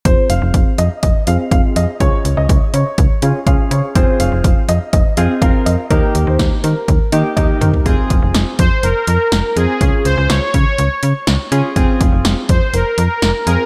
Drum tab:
HH |x-x-x-x-x-x-x-x-|x-x-x-x-x-x-x-x-|x-x-x-x-x-x-x-x-|x-x-x-x-x-x-x-x-|
SD |----------------|----------------|----------------|----o-----------|
T1 |----------------|----------------|----------------|------------o---|
T2 |----------------|----------------|----------------|--------------o-|
FT |----------------|----------------|----------------|---------------o|
BD |o---o---o---o---|o---o---o---o---|o---o---o---o---|o---o---o---o---|

HH |x-x-x-x-x-x-x-x-|x-x-x-x-x-x-x-x-|x-x-x-x-x-x-x-x-|
SD |----o-------o---|----o-------o---|----o-------o---|
T1 |----------------|----------------|----------------|
T2 |----------------|----------------|----------------|
FT |----------------|----------------|----------------|
BD |o-o---o---------|o-----o---------|o-o---o---------|